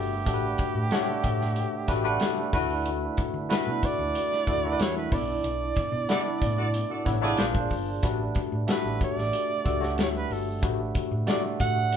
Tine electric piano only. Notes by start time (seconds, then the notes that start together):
Already playing: A3 D4 F#4 G4 A#4 B4 D5
0.26 A3 D4 G4 A4 F#5
0.34 B4
0.91 A3 D4 G4 C#5 F#5
1.87 A3 D4 F#4 G4 B4
2.04 A3 D4 G4 B4 F#5
2.53 A3 D4 E4 F#4 B4
3.49 A3 D4 E4 F#4 B4
4.47 A3 D4 E4 F#4 A4
4.64 A3 D4 E4 F#4 A#4
4.72 B4
5.12 B3 D4 E4 A4 D5
6.09 B3 D4 E4 A4 D5
7.05 B3 D4 E4 A4 C#5
7.21 B3 D4 E4 A4 C#5
7.38 A#3 D4 F4 G#4 C5
8.03 A3 D4 F#4 G4 B4
8.67 A3 D4 F#4 G4 A4
9.64 A3 D4 F#4 G4 A4
9.80 A3 D4 F#4 G4 C#5
10.62 A3 D4 F#4 G4 B4
11.27 A3 D4 F#4 G4 D5